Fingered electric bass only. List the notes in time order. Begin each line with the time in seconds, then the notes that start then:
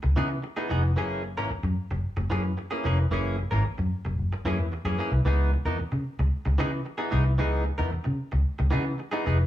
0.04 C#2
0.17 C#3
0.71 F1
0.96 F#1
1.37 G#1
1.51 muted fingered electric bass stroke
1.63 F#2
1.91 F#1
2.17 F#1
2.31 F#2
2.85 F1
3.11 F#1
3.52 G#1
3.65 muted fingered electric bass stroke
3.79 F#2
4.05 F#1
4.18 F#1
4.45 F#2
4.58 E2
4.85 F#2
5.12 C2
5.25 C#2
5.65 E2
5.79 muted fingered electric bass stroke
5.92 C#3
6.19 C#2
6.46 C#2
6.60 C#3
7.13 C2
7.40 C#2
7.79 E2
7.93 muted fingered electric bass stroke
8.06 C#3
8.33 C#2
8.60 C#2
8.74 C#3
9.27 F1